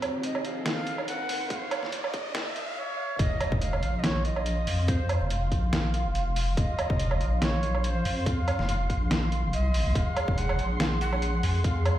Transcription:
0.00 2.73 C4 medium
0.00 2.74 D#4 medium
0.00 2.73 C5 medium
0.00 closed hi-hat medium
0.00 riser medium
0.00 low woodblock medium
0.14 0.46 F1 medium
0.23 0.46 D#5 medium
0.23 closed hi-hat medium
0.35 low woodblock medium
0.45 1.28 A#1 medium
0.45 0.65 F5 loud
0.45 closed hi-hat medium
0.66 1.05 F5 loud
0.66 snare loud
0.66 closed hi-hat medium
0.87 closed hi-hat medium
0.98 low woodblock medium
1.08 1.47 F#5 loud
1.08 closed hi-hat medium
1.29 1.81 F2 loud
1.29 open hi-hat medium
1.50 1.55 F#5 medium
1.50 kick loud
1.50 closed hi-hat medium
1.54 1.90 F5 loud
1.71 closed hi-hat medium
1.71 low woodblock medium
1.83 2.15 F1 loud
1.83 snare soft
1.92 closed hi-hat medium
2.04 low woodblock medium
2.14 2.69 A#1 medium
2.14 kick loud
2.14 closed hi-hat medium
2.35 snare loud
2.35 closed hi-hat medium
2.56 closed hi-hat medium
2.67 2.77 F1 loud
2.77 3.21 C#5 loud
3.19 3.30 F1 loud
3.19 11.99 F3 medium
3.19 3.63 D#5 loud
3.19 9.94 F5 loud
3.19 11.99 C6 medium
3.19 kick loud
3.19 closed hi-hat medium
3.19 impact medium
3.41 closed hi-hat medium
3.41 low woodblock medium
3.52 3.84 F1 medium
3.52 kick loud
3.61 4.00 F5 loud
3.61 closed hi-hat medium
3.73 low woodblock medium
3.83 4.66 A#1 medium
3.83 closed hi-hat medium
3.99 4.05 D#5 medium
4.03 4.26 C#5 loud
4.03 snare loud
4.03 closed hi-hat medium
4.24 4.89 D#5 loud
4.24 closed hi-hat medium
4.36 low woodblock medium
4.46 closed hi-hat medium
4.67 5.20 F2 loud
4.67 open hi-hat loud
4.88 5.30 C5 medium
4.88 kick loud
4.88 closed hi-hat medium
5.09 closed hi-hat medium
5.09 low woodblock medium
5.21 5.53 F1 medium
5.30 closed hi-hat medium
5.52 6.07 A#1 medium
5.52 kick medium
5.52 closed hi-hat medium
5.73 snare loud
5.73 closed hi-hat medium
5.94 closed hi-hat medium
6.05 6.56 F1 loud
6.15 closed hi-hat medium
6.36 open hi-hat medium
6.57 6.68 F1 loud
6.57 7.38 D#5 loud
6.57 kick loud
6.57 closed hi-hat medium
6.79 closed hi-hat medium
6.79 low woodblock medium
6.90 7.22 F1 medium
6.90 kick loud
7.00 closed hi-hat medium
7.11 low woodblock medium
7.21 8.04 A#1 medium
7.21 closed hi-hat medium
7.42 7.81 C#5 loud
7.42 snare loud
7.42 closed hi-hat medium
7.63 closed hi-hat medium
7.75 low woodblock medium
7.84 7.90 C#5 medium
7.84 closed hi-hat medium
7.89 8.28 C5 loud
8.05 8.58 F2 loud
8.05 open hi-hat medium
8.26 9.11 F5 loud
8.26 kick loud
8.26 closed hi-hat medium
8.48 closed hi-hat medium
8.48 low woodblock medium
8.59 8.91 F1 medium
8.59 snare soft
8.69 closed hi-hat medium
8.90 9.45 A#1 medium
8.90 kick medium
8.90 closed hi-hat medium
9.11 snare loud
9.11 closed hi-hat medium
9.32 closed hi-hat medium
9.44 9.55 F1 loud
9.53 9.76 C2 loud
9.53 9.97 D#5 loud
9.53 closed hi-hat medium
9.74 9.85 G#1 medium
9.74 open hi-hat medium
9.86 9.95 C2 loud
9.95 10.06 F1 loud
9.95 11.99 G#4 loud
9.95 10.39 F5 loud
9.95 kick loud
9.95 closed hi-hat medium
10.17 closed hi-hat medium
10.17 low woodblock medium
10.28 10.60 F1 medium
10.28 kick loud
10.38 10.79 F#5 loud
10.38 closed hi-hat medium
10.49 low woodblock medium
10.59 11.42 A#1 medium
10.59 closed hi-hat medium
10.80 10.86 F5 loud
10.80 snare loud
10.80 closed hi-hat medium
11.01 11.66 F#5 loud
11.01 closed hi-hat medium
11.13 low woodblock medium
11.22 closed hi-hat medium
11.43 11.96 F2 loud
11.43 open hi-hat medium
11.64 11.99 F5 loud
11.64 kick loud
11.64 closed hi-hat medium
11.86 closed hi-hat medium
11.86 low woodblock medium

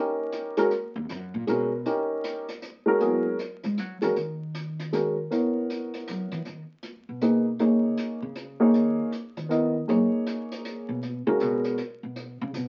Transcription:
0.00 0.53 C#4 medium
0.00 0.53 D#4 soft
0.00 0.53 G4 medium
0.00 0.53 A#4 medium
0.32 closed hi-hat medium
0.57 0.70 G#3 medium
0.57 0.70 C#4 medium
0.57 0.70 F#4 medium
0.57 0.70 A#4 medium
0.57 closed hi-hat soft
0.71 closed hi-hat soft
0.96 1.09 D#2 loud
1.09 1.34 F#2 medium
1.09 closed hi-hat medium
1.34 1.47 A#2 medium
1.47 1.84 B2 medium
1.47 1.70 G#3 medium
1.47 1.70 C#4 medium
1.47 1.70 F#4 soft
1.47 1.71 A#4 medium
1.47 closed hi-hat medium
1.86 2.44 C#4 medium
1.86 2.44 D#4 medium
1.86 2.45 G4 medium
1.86 2.45 A#4 medium
1.86 closed hi-hat soft
2.24 closed hi-hat medium
2.49 closed hi-hat soft
2.62 closed hi-hat soft
2.86 3.36 G#3 medium
2.86 3.37 C#4 medium
2.86 3.37 F#4 medium
2.86 3.37 A#4 medium
3.00 3.23 F#3 medium
3.00 3.23 B3 soft
3.00 3.23 E4 soft
3.00 3.24 G#4 medium
3.00 closed hi-hat soft
3.39 closed hi-hat soft
3.63 3.79 G#3 medium
3.63 closed hi-hat soft
3.78 4.02 F#3 medium
3.78 closed hi-hat soft
4.01 4.16 E3 medium
4.01 4.14 G#3 medium
4.01 4.15 C#4 soft
4.01 4.15 F#4 medium
4.01 4.15 A#4 medium
4.01 closed hi-hat soft
4.16 5.27 D#3 medium
4.16 closed hi-hat soft
4.55 closed hi-hat soft
4.79 closed hi-hat soft
4.93 5.15 G#3 soft
4.93 5.15 C#4 soft
4.93 5.15 F#4 soft
4.93 5.16 A#4 medium
4.93 closed hi-hat medium
5.31 6.37 B3 soft
5.31 6.38 E4 soft
5.31 6.38 A#4 soft
5.31 6.38 C#5 medium
5.31 closed hi-hat soft
5.70 closed hi-hat soft
5.94 closed hi-hat soft
6.08 6.32 F#3 medium
6.08 closed hi-hat soft
6.32 6.45 E3 medium
6.32 closed hi-hat soft
6.45 6.61 D#3 medium
6.45 closed hi-hat soft
6.83 closed hi-hat soft
7.09 7.57 B2 medium
7.21 7.44 A#3 medium
7.21 7.44 D#4 soft
7.21 7.44 G#4 soft
7.21 7.44 B4 medium
7.21 closed hi-hat medium
7.59 7.85 C#3 medium
7.59 8.18 A#3 soft
7.59 8.18 D#4 soft
7.59 8.18 G#4 soft
7.59 8.18 C#5 medium
7.59 closed hi-hat soft
7.97 closed hi-hat soft
8.22 8.71 C#3 medium
8.36 closed hi-hat soft
8.60 9.09 A#3 medium
8.60 9.09 D#4 medium
8.60 9.10 G#4 medium
8.60 9.10 C#5 medium
8.74 8.99 D#3 medium
8.74 closed hi-hat soft
9.12 closed hi-hat medium
9.37 9.85 D#3 medium
9.37 closed hi-hat soft
9.49 9.72 B3 medium
9.49 9.72 E4 soft
9.49 9.73 A#4 soft
9.49 9.73 D#5 medium
9.49 closed hi-hat soft
9.88 10.04 F#3 medium
9.88 10.94 A#3 medium
9.88 10.95 D#4 soft
9.88 10.95 G#4 medium
9.88 10.95 C#5 medium
9.88 closed hi-hat soft
10.26 closed hi-hat medium
10.52 closed hi-hat soft
10.65 closed hi-hat soft
10.89 11.24 B2 medium
11.03 closed hi-hat soft
11.27 11.41 C#3 loud
11.27 11.76 G#3 medium
11.27 11.76 C#4 medium
11.27 11.77 F#4 medium
11.27 11.77 A#4 medium
11.40 11.79 B2 medium
11.40 closed hi-hat soft
11.64 closed hi-hat soft
11.78 closed hi-hat soft
12.03 12.39 B2 medium
12.16 closed hi-hat soft
12.41 12.55 C#3 loud
12.54 12.68 B2 medium
12.54 closed hi-hat medium

